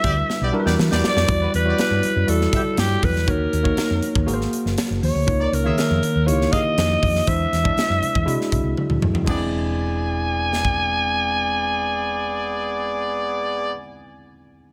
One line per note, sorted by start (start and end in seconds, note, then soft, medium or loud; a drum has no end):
0.00 0.21 D2 medium
0.00 0.52 G3 medium
0.00 0.14 B3 medium
0.00 0.53 D4 medium
0.00 0.53 E4 medium
0.00 0.53 F#4 medium
0.00 0.14 G4 medium
0.00 1.30 A4 medium
0.00 0.60 B4 medium
0.00 0.14 D5 loud
0.00 0.79 E5 loud
0.00 kick medium
0.00 closed hi-hat medium
0.05 muted conga medium
0.30 snare medium
0.41 0.50 B1 loud
0.41 0.52 B3 medium
0.41 0.52 G4 medium
0.41 0.52 D5 medium
0.52 1.09 G3 medium
0.52 1.09 D4 medium
0.52 1.10 E4 medium
0.52 1.10 F#4 medium
0.52 0.60 A#4 medium
0.52 muted conga soft
0.60 1.13 B4 loud
0.66 0.75 E2 medium
0.66 0.74 B3 medium
0.66 0.74 G4 loud
0.66 0.74 D5 loud
0.66 snare medium
0.79 0.87 E3 loud
0.79 snare loud
0.79 high conga medium
0.91 1.00 E2 medium
0.91 1.27 B3 loud
0.91 1.27 G4 loud
0.91 1.27 D5 loud
0.91 snare medium
1.04 1.51 D5 loud
1.04 snare loud
1.04 high conga medium
1.16 1.25 F2 loud
1.16 snare loud
1.27 1.46 E2 loud
1.27 1.56 G3 medium
1.27 1.56 E4 medium
1.27 1.56 F#4 medium
1.27 1.56 D5 medium
1.27 kick loud
1.27 closed hi-hat medium
1.27 muted conga medium
1.41 1.51 G3 medium
1.41 1.51 F#4 medium
1.41 1.51 B4 medium
1.54 1.71 E2 loud
1.54 1.78 B4 loud
1.54 closed hi-hat medium
1.64 2.12 G3 medium
1.64 2.02 B3 medium
1.64 2.12 E4 medium
1.64 2.12 F#4 medium
1.64 2.01 G4 medium
1.64 1.72 C#5 medium
1.64 2.01 D5 medium
1.72 2.15 D5 medium
1.78 2.31 B4 loud
1.78 snare loud
1.78 closed hi-hat medium
1.78 high conga medium
1.91 1.99 G2 medium
2.03 closed hi-hat medium
2.03 muted conga soft
2.16 2.24 F#2 medium
2.26 2.45 E2 medium
2.26 3.02 G3 medium
2.26 3.02 E4 medium
2.26 3.02 F#4 medium
2.26 2.80 A4 loud
2.26 3.03 D5 medium
2.26 closed hi-hat medium
2.41 snare soft
2.53 2.61 B3 medium
2.53 2.61 G4 medium
2.53 2.61 E5 medium
2.53 kick loud
2.53 closed hi-hat medium
2.53 low conga medium
2.77 2.95 G2 medium
2.77 3.06 G4 medium
2.77 snare loud
2.77 closed hi-hat loud
2.77 high conga medium
2.92 high conga soft
3.03 3.28 E2 medium
3.03 3.31 B4 medium
3.03 kick medium
3.03 open hi-hat medium
3.03 high conga medium
3.16 snare soft
3.27 3.45 D#2 loud
3.27 3.55 A#3 medium
3.27 3.56 D#4 medium
3.27 3.56 F#4 medium
3.27 4.29 A#4 medium
3.27 3.56 C#5 medium
3.27 kick loud
3.27 closed hi-hat medium
3.27 muted conga medium
3.53 3.70 D#2 loud
3.53 closed hi-hat medium
3.63 4.11 A#3 medium
3.63 4.11 D#4 medium
3.63 4.12 F#4 medium
3.63 4.12 C#5 medium
3.63 kick medium
3.77 snare loud
3.77 closed hi-hat medium
3.77 high conga medium
3.90 3.99 F2 loud
4.03 closed hi-hat medium
4.03 muted conga medium
4.15 4.24 D#2 medium
4.15 kick loud
4.26 4.45 G#1 loud
4.26 5.02 A#3 medium
4.26 5.02 F#4 medium
4.26 5.02 G#4 medium
4.26 4.33 A#4 medium
4.26 closed hi-hat medium
4.34 5.06 C5 loud
4.41 snare soft
4.53 closed hi-hat medium
4.53 muted conga soft
4.65 4.74 F#1 medium
4.65 snare soft
4.78 snare loud
4.78 closed hi-hat loud
4.78 high conga medium
4.90 4.99 F#1 medium
4.90 high conga soft
5.02 5.11 D#2 loud
5.02 5.55 C#5 medium
5.02 open hi-hat medium
5.02 high conga medium
5.15 5.24 D2 medium
5.26 5.45 C#2 loud
5.26 5.55 A#3 medium
5.26 5.55 D#4 medium
5.26 5.55 F4 medium
5.26 5.55 C#5 medium
5.26 kick loud
5.26 closed hi-hat medium
5.26 muted conga medium
5.40 5.50 A#4 medium
5.40 5.50 D5 medium
5.52 5.70 C#2 medium
5.52 5.77 A#4 medium
5.52 closed hi-hat medium
5.64 6.12 D#3 medium
5.64 6.00 A#3 medium
5.64 6.11 A#3 medium
5.64 6.12 F4 medium
5.64 5.99 G#4 medium
5.64 6.12 C#5 medium
5.64 6.00 E5 medium
5.78 6.28 A#4 medium
5.78 snare loud
5.78 closed hi-hat medium
5.78 high conga medium
5.90 5.99 F2 medium
6.03 closed hi-hat medium
6.03 muted conga soft
6.15 6.29 D#2 medium
6.26 6.45 C#2 medium
6.26 7.02 A#3 medium
6.26 7.02 D#4 medium
6.26 6.33 E4 medium
6.26 7.02 G4 medium
6.26 6.54 C#5 loud
6.26 closed hi-hat medium
6.33 7.05 F4 medium
6.41 snare soft
6.50 6.58 A#3 medium
6.50 6.59 G#4 medium
6.50 7.29 D#5 loud
6.50 6.59 F5 medium
6.50 kick medium
6.50 closed hi-hat medium
6.50 muted conga soft
6.50 low conga medium
6.78 6.95 F2 loud
6.78 snare loud
6.78 closed hi-hat loud
6.78 high conga medium
6.90 high conga soft
7.03 7.20 F2 medium
7.03 kick medium
7.03 open hi-hat medium
7.03 high conga medium
7.15 snare soft
7.27 7.45 E2 loud
7.27 7.55 G#3 medium
7.27 7.55 D4 medium
7.27 7.55 E4 medium
7.27 7.55 C5 medium
7.27 8.77 E5 loud
7.27 kick loud
7.27 closed hi-hat medium
7.27 muted conga medium
7.52 7.70 E2 medium
7.52 snare soft
7.52 closed hi-hat medium
7.63 8.11 G#3 medium
7.63 8.11 D4 medium
7.63 8.11 E4 medium
7.63 8.11 D5 medium
7.63 kick medium
7.77 snare loud
7.77 closed hi-hat medium
7.77 high conga medium
7.90 7.98 F#2 medium
8.02 closed hi-hat medium
8.02 muted conga soft
8.02 low conga medium
8.15 8.24 E2 medium
8.15 kick loud
8.25 8.35 C3 loud
8.25 9.01 G#3 medium
8.25 9.02 D4 medium
8.25 9.02 E4 medium
8.25 9.02 F#4 medium
8.25 closed hi-hat medium
8.41 snare soft
8.52 8.61 C2 medium
8.52 kick medium
8.52 closed hi-hat medium
8.63 8.73 C2 medium
8.77 high tom medium
8.77 high conga medium
8.89 8.98 D2 medium
8.89 mid tom medium
8.89 high conga soft
9.02 9.11 E2 medium
9.02 mid tom medium
9.02 high conga medium
9.14 9.23 F2 medium
9.14 floor tom medium
9.24 13.72 E1 medium
9.24 13.69 G#3 medium
9.24 13.72 B3 medium
9.24 13.71 D4 medium
9.24 13.73 E4 medium
9.24 13.72 G#4 medium
9.24 13.72 D5 medium
9.24 kick loud
9.24 crash medium
9.24 muted conga medium
9.29 13.74 C4 medium
9.29 13.74 G#5 loud
10.53 snare medium
10.65 kick medium